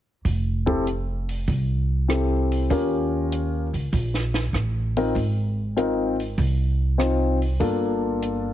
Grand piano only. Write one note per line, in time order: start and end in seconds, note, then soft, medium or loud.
0.66 0.84 C4 medium
0.66 0.84 E4 soft
0.66 0.84 G4 soft
0.66 0.84 A4 medium
2.08 2.70 C4 soft
2.08 2.70 E4 soft
2.08 2.70 G4 soft
2.08 2.71 A4 soft
2.70 3.66 C#4 soft
2.70 3.66 F4 soft
2.70 3.66 G4 soft
2.70 3.66 A#4 medium
4.97 5.14 C4 medium
4.97 5.14 D#4 soft
4.97 5.14 F4 soft
4.97 5.14 A#4 medium
5.76 6.15 C4 soft
5.76 6.15 D#4 soft
5.76 6.15 F4 soft
5.76 6.15 A#4 medium
6.98 7.37 C4 soft
6.98 7.37 D#4 soft
6.98 7.37 F4 soft
6.98 7.37 C5 soft
7.60 8.53 A#3 medium
7.60 8.53 D4 soft
7.60 8.53 F4 soft
7.60 8.53 A4 medium